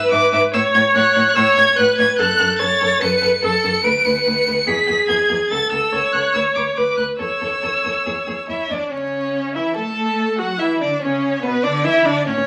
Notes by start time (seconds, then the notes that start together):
Already playing: B4 E6
0.11 G#2 E5 D6
0.33 G#2 E5 D6
0.53 A2 C#5 E6
0.74 A2 C#5 G#6
0.95 A2 C#5 F#6
1.15 A2 C#5
1.36 A2 C#5 E6
1.55 A2 C#5 G#6
1.76 A2 B4 C#5 F#6
1.98 A2 C#5 G#6
2.19 F#2 A4 F#6
2.39 F#2 A4
2.59 F#2 A4 C#5 A6
2.81 F#2 A4
3.00 F#2 A4 B4 C#7
3.22 F#2 A4
3.42 F#2 A4 C#7
3.63 F#2 A4
3.83 D2 B4 D7
4.05 D2 B4 C#7
4.26 D2 B4
4.46 D2 B4
4.67 E2 G#4 B6
4.87 E2 G#4
5.08 E2 G#4 G#6
5.29 E2 G#4
5.50 C#2 A4 A6
5.72 C#2 A4 E6
5.92 C#2 A4 C#5
6.13 C#2 A4 F#6
6.34 D2 B4 E6
6.55 D2 B4 D6
6.76 D2 B4 D6
6.97 D2 B4 F#6
7.19 E2 A4 C#5 E6
7.41 E2 A4
7.62 E2 A4
7.84 E2 A4
8.06 E2 G#4
8.27 E2 G#4
8.48 E2 E4 E5
8.70 E2 D4 D5
8.92 C#3 C#4 C#5
9.55 E3 E4 E5
9.76 A3 A4 A5
10.39 F#3 F#4 F#5
10.59 E3 E4 E5
10.81 D3 D4 D5
11.01 C#3 C#4 C#5
11.42 B2 B3 B4
11.63 D3 D4 D5
11.84 E3 E4 E5
12.05 D3 D4 D5
12.27 A2 C#4 C#5
12.37 A2 C#4